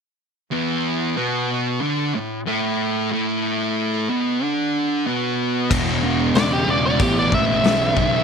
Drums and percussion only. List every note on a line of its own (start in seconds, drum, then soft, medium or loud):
5.71 kick loud
5.71 crash loud
6.35 snare loud
6.35 open hi-hat soft
6.99 kick loud
6.99 open hi-hat medium
7.32 kick medium
7.64 snare medium
7.64 open hi-hat soft
7.97 kick medium